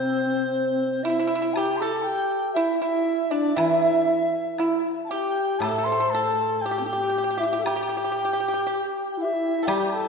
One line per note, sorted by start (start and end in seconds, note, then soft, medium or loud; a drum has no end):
0.00 2.06 C3 medium
0.00 1.04 C4 medium
0.00 1.05 C5 medium
1.03 1.58 E4 medium
1.03 1.09 E4 medium
1.03 1.55 E5 medium
1.10 1.18 E4 medium
1.19 1.26 E4 medium
1.27 1.34 E4 medium
1.35 1.41 E4 medium
1.42 1.49 E4 soft
1.54 1.82 G4 medium
1.54 1.80 G4 medium
1.54 1.59 A5 medium
1.54 high woodblock medium
1.58 1.78 G5 medium
1.77 2.09 A4 medium
1.77 2.02 A5 medium
1.77 1.81 C6 medium
1.82 2.53 A4 medium
2.03 2.51 G5 medium
2.07 2.57 G4 medium
2.54 2.81 E4 medium
2.54 2.80 E4 medium
2.54 2.78 E5 medium
2.80 3.33 E4 medium
2.80 3.12 E4 medium
2.80 3.32 E5 medium
3.12 3.28 D4 medium
3.31 3.55 D4 medium
3.31 3.56 D4 medium
3.31 3.58 D5 medium
3.56 6.64 E3 medium
3.56 4.27 E4 medium
3.56 4.53 E4 medium
3.56 4.83 E5 medium
3.56 3.61 G5 medium
3.56 high woodblock medium
4.58 4.81 E4 medium
4.58 4.83 E4 medium
4.58 high woodblock soft
4.58 low woodblock soft
5.05 5.11 A5 medium
5.09 5.63 G4 medium
5.09 5.59 G4 medium
5.09 5.60 G5 medium
5.59 8.67 A2 medium
5.59 5.88 A4 medium
5.59 5.86 A5 medium
5.59 high woodblock medium
5.63 5.70 A4 medium
5.71 5.77 A4 soft
5.78 5.84 A4 medium
5.84 5.91 A4 medium
5.84 6.15 C5 medium
5.84 6.12 C6 medium
5.92 5.99 A4 medium
6.00 6.07 A4 medium
6.10 6.67 A4 medium
6.10 6.63 A5 medium
6.15 6.62 A4 medium
6.61 6.86 G5 medium
6.66 6.70 G4 medium
6.66 6.80 G4 medium
6.71 6.77 G4 soft
6.78 6.84 C4 soft
6.78 6.85 G4 soft
6.84 6.87 D4 soft
6.84 6.89 E4 soft
6.84 6.92 G4 soft
6.84 7.40 G5 medium
6.90 7.42 G4 medium
6.90 7.00 G4 medium
7.03 7.08 G4 soft
7.09 7.16 G4 soft
7.18 7.23 G4 soft
7.24 7.29 G4 medium
7.30 7.36 G4 soft
7.37 7.48 E4 medium
7.37 7.42 G4 medium
7.37 7.66 E5 medium
7.43 7.51 G4 soft
7.43 7.56 G4 medium
7.53 7.60 E4 medium
7.53 7.60 G4 medium
7.59 7.66 A4 medium
7.64 9.19 G4 medium
7.64 7.73 G4 medium
7.64 9.10 G5 medium
7.64 high woodblock medium
7.76 7.81 G4 medium
7.83 7.88 G4 medium
7.89 7.96 G4 soft
7.97 8.03 G4 medium
8.04 8.11 G4 soft
8.12 8.18 G4 medium
8.19 8.24 G4 soft
8.25 8.32 G4 medium
8.33 8.39 G4 soft
8.40 8.47 G4 medium
8.48 8.53 G4 soft
8.54 8.61 G4 medium
8.67 9.57 G4 medium
9.11 9.17 G5 medium
9.17 9.26 E4 medium
9.17 9.23 G5 medium
9.22 9.34 G4 medium
9.22 9.67 E5 medium
9.33 9.68 E4 medium
9.63 9.67 A4 medium
9.63 9.90 G5 medium
9.67 10.08 G3 medium
9.67 10.08 G4 medium
9.67 9.92 G4 medium
9.67 high woodblock medium
9.91 10.08 A4 medium
9.91 10.08 A5 medium